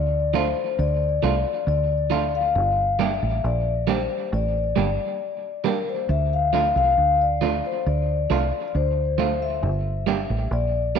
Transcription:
Already playing: D2 D5
0.34 F3 A3 D4 F4 C5
0.57 muted clean electric guitar stroke
0.79 D2 D5
1.23 C2 F3 A3 D4 F4
1.45 muted clean electric guitar stroke
1.67 D2 D5
2.10 F3 A3 D4 F4
2.35 F5
2.55 G1
2.99 G3 A#3 D4 G4 E5
3.23 A1
3.44 A#1 D5
3.87 G3 A#3 D4 G4 C5
4.10 muted clean electric guitar stroke
4.33 A1 D5
4.76 G1 G3 A#3 D4 G4
4.98 muted clean electric guitar stroke
5.64 G3 A#3 D4 G4 A#4
5.89 C5
6.09 D2 E5
6.33 F5
6.53 F3 A3 D4 F4
6.76 C2 F5
6.98 D2
7.21 D5
7.41 F3 A3 D4 F4
7.65 C5, muted clean electric guitar stroke
7.86 D2 D5
8.30 C2 F3 A3 D4 F4
8.52 muted clean electric guitar stroke
8.68 D5
8.75 D2 C5
9.18 F3 A3 D4 F4
9.42 E5
9.63 G1
10.07 G3 A#3 D4 G4
10.30 A1
10.51 A#1 D5
10.95 G3 A#3

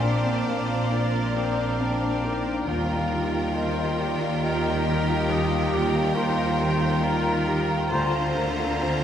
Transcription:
Already playing: A#1 A#2 C4 D4 C5 D5 F5
0.02 A#2 D4 A#4 G5
0.26 C4
0.46 A#4 F5
0.71 D4
0.92 F4 C5 D5
1.14 D4
1.36 C4 A#4
1.58 D4
1.79 C4 D4 G5
2.03 D4
2.25 D#4 A#4
2.47 D4
2.67 D#2 D#3 G3 F4 A#4 F5 G5
2.89 F4
3.12 G4
3.34 F4
3.55 A#4 C5 D#5
3.78 F4
4.00 G4 D5
4.22 F4
4.44 A#3 G4 A#4 D#5
4.65 F4
4.86 G4 A#4
5.08 F4
5.29 D#2 D#5
5.51 A#3
5.73 G4 D5
5.94 F4
6.15 D#4 A#4 C5 F5
6.37 F4
6.59 G4 G5
6.81 F4
7.02 A#3 F4 A#4 A#5
7.26 F4
7.47 G4
7.70 F4
7.91 D2 D3 A#3 C4 F4 C5 A#5
8.14 F4
8.37 A#4
8.60 F4
8.81 C5

